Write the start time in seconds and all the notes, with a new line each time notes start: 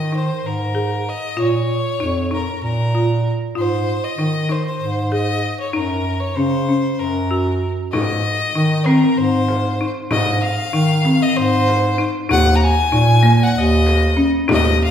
Already playing: D#3 D#5
0.12 D#4
0.17 C5
0.44 G#2 A#4
0.75 G#4
1.09 D#5
1.37 A#2 F4 C#5
2.00 F2 D#4
2.31 D#4 A#4
2.62 A#2 A#4
2.95 F4
3.55 G#2 F4 C5
4.04 D#5
4.18 D#3 D#4
4.49 D#4 C5
4.66 C5
4.80 G#2
5.12 G#4 D#5
5.60 C#5
5.73 F#2 D#4 A#4
6.20 C#5
6.36 C#3 C#4 C5
6.69 C#4
6.99 F#2 A#4
7.31 F#4
7.92 G#2 D#4 D#5, frame drum
8.55 D#3 D#4
8.86 C4 A#4, frame drum
9.17 G#2 C5, frame drum
9.48 frame drum
9.81 D#4
10.11 G#2 D#4 D#5, frame drum
10.43 F5
10.73 D#3 D#4
11.05 C4, frame drum
11.22 D#5
11.36 G#2 C5, frame drum
11.68 frame drum
11.98 D#4, frame drum
12.29 D#2 D#4 F#5, frame drum
12.56 A#5
12.64 G#5
12.92 A#2 D#4
13.23 A#3, frame drum
13.43 F#5
13.55 D#2 D#5, frame drum
13.86 frame drum
14.17 C#4, frame drum
14.48 D#2 D#4, frame drum
14.52 D#5
14.84 F5